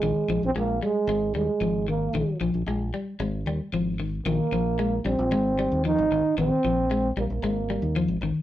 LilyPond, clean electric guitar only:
\new Staff \with { instrumentName = "Clean electric guitar" } { \clef bass \time 4/4 \key aes \lydian \tempo 4 = 114 ees8 f8 aes8 g8 aes8 g8 f8 ees8 | ees8 f8 aes8 g8 aes8 g8 f8 ees8 | ees8 f8 aes8 g8 aes8 g8 f8 ees8 | ees8 f8 aes8 g8 aes8 g8 f8 ees8 | }